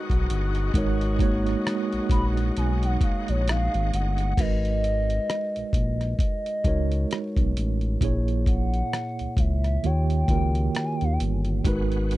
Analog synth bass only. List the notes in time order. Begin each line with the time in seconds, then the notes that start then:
0.11 B1
0.30 G1
0.75 G#1
1.93 A#1
2.11 A#1
2.57 B1
3.02 A#1
3.29 A#1
3.75 G#1
3.94 G1
4.38 G#1
5.57 A#1
5.74 A#1
6.65 C#2
7.37 B1
7.57 A1
8.02 A#1
9.20 C#2
9.38 C#2
9.85 D#2
10.29 C#2
11.02 D#2
11.21 G1
11.66 G#1